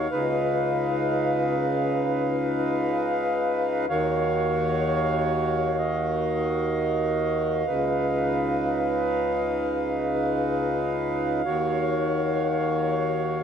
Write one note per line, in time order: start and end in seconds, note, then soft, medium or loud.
0.00 3.86 F5 medium
0.12 3.86 C#2 medium
0.12 3.86 C#3 medium
0.12 3.86 D#4 medium
0.12 3.86 B4 medium
3.90 7.64 D#2 medium
3.90 7.64 D#3 medium
3.90 7.64 F#4 medium
3.90 5.77 C#5 medium
3.90 13.43 F5 loud
5.79 7.66 D#5 medium
7.67 11.42 C#2 medium
7.67 11.42 C#3 medium
7.67 11.42 D#4 medium
7.67 11.42 B4 medium
11.46 13.43 D#2 medium
11.46 13.43 D#3 medium
11.46 13.43 F#4 medium
11.46 13.43 C#5 medium